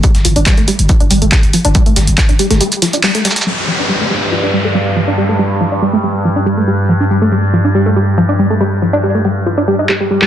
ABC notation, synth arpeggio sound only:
X:1
M:4/4
L:1/16
Q:1/4=140
K:Cdor
V:1 name="Synth arpeggio sound" clef=bass
G, z F, D G, A, G, z F, D G, A, G, z F, D | G, A, G, z F, D G, A, G, z F, D G, A, G, z | G, z F, D G, A, G, z F, D G, A, G, z F, D | G, A, G, z F, D G, A, G, z F, D G, A, G, z |
F, D G, A, G, z F, D G, A, G, z F, D G, A, | G, z F, D G, A, G, z F, D G, E G, G, G, G, |]